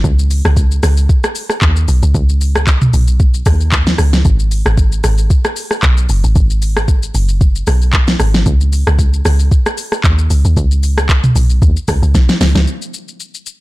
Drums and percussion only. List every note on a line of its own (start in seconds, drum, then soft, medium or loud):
0.04 kick loud
0.04 shaker medium
0.19 shaker medium
0.31 open hi-hat medium
0.31 shaker medium
0.45 cross-stick loud
0.45 shaker soft
0.57 kick medium
0.57 shaker medium
0.71 shaker medium
0.83 cross-stick loud
0.83 open hi-hat medium
0.83 shaker loud
0.97 shaker medium
1.09 kick loud
1.09 shaker medium
1.24 cross-stick loud
1.24 shaker medium
1.35 open hi-hat medium
1.35 shaker loud
1.50 cross-stick medium
1.50 shaker medium
1.62 kick medium
1.62 clap medium
1.62 shaker medium
1.76 shaker medium
1.88 open hi-hat medium
1.88 shaker medium
2.03 shaker medium
2.15 kick loud
2.15 shaker medium
2.29 shaker medium
2.41 open hi-hat medium
2.41 shaker medium
2.56 cross-stick loud
2.56 shaker soft
2.67 kick medium
2.67 clap medium
2.67 shaker medium
2.82 mid tom loud
2.82 shaker medium
2.93 open hi-hat medium
2.93 shaker loud
3.08 shaker medium
3.20 kick loud
3.20 shaker medium
3.34 shaker medium
3.46 kick medium
3.46 cross-stick medium
3.46 open hi-hat medium
3.46 shaker loud
3.61 shaker medium
3.72 kick loud
3.72 clap medium
3.72 shaker medium
3.87 snare medium
3.87 shaker medium
3.98 cross-stick medium
3.98 open hi-hat medium
3.98 shaker medium
4.13 snare medium
4.13 shaker medium
4.25 kick loud
4.25 shaker medium
4.39 shaker medium
4.51 open hi-hat medium
4.51 shaker medium
4.66 cross-stick loud
4.66 shaker soft
4.78 kick loud
4.78 shaker medium
4.92 shaker medium
5.04 cross-stick medium
5.04 open hi-hat medium
5.04 shaker loud
5.18 shaker medium
5.30 kick loud
5.30 shaker medium
5.45 cross-stick loud
5.45 shaker medium
5.56 open hi-hat medium
5.56 shaker loud
5.71 cross-stick medium
5.71 shaker medium
5.83 kick medium
5.83 clap medium
5.83 shaker medium
5.97 shaker medium
6.09 open hi-hat medium
6.09 shaker medium
6.24 shaker medium
6.36 kick loud
6.36 shaker medium
6.50 shaker medium
6.62 open hi-hat medium
6.62 shaker medium
6.77 cross-stick loud
6.77 shaker soft
6.88 kick medium
6.88 shaker medium
7.03 shaker medium
7.15 open hi-hat medium
7.15 shaker loud
7.29 shaker medium
7.41 kick loud
7.41 shaker medium
7.55 shaker medium
7.67 cross-stick medium
7.67 open hi-hat medium
7.67 shaker loud
7.82 shaker medium
7.93 kick loud
7.93 clap medium
7.93 shaker medium
8.08 snare medium
8.08 shaker medium
8.20 cross-stick medium
8.20 open hi-hat medium
8.20 shaker medium
8.34 snare medium
8.34 shaker medium
8.46 kick loud
8.46 shaker medium
8.61 shaker medium
8.73 open hi-hat medium
8.73 shaker medium
8.87 cross-stick loud
8.87 shaker soft
8.99 kick loud
8.99 shaker medium
9.14 shaker medium
9.25 cross-stick loud
9.25 open hi-hat medium
9.25 shaker loud
9.39 shaker medium
9.52 kick loud
9.52 shaker medium
9.66 cross-stick loud
9.66 shaker medium
9.78 open hi-hat medium
9.78 shaker loud
9.92 cross-stick medium
9.92 shaker soft
10.04 kick loud
10.04 clap medium
10.04 shaker medium
10.19 shaker medium
10.30 open hi-hat medium
10.30 shaker medium
10.45 shaker medium
10.57 kick loud
10.57 shaker medium
10.71 shaker medium
10.83 open hi-hat medium
10.83 shaker medium
10.98 cross-stick loud
10.98 shaker soft
11.09 kick medium
11.09 clap medium
11.09 shaker medium
11.24 mid tom loud
11.24 shaker medium
11.36 open hi-hat medium
11.36 shaker loud
11.50 shaker medium
11.62 kick loud
11.62 shaker medium
11.77 shaker medium
11.88 kick medium
11.88 cross-stick medium
11.88 open hi-hat medium
11.88 shaker loud
12.03 shaker soft
12.15 kick medium
12.15 snare medium
12.15 shaker medium
12.29 snare medium
12.29 shaker medium
12.41 snare medium
12.41 open hi-hat medium
12.41 shaker medium
12.56 snare loud
12.56 shaker medium
12.67 shaker medium
12.82 shaker soft
12.94 shaker medium
13.08 shaker soft
13.20 shaker medium
13.35 shaker medium
13.46 shaker medium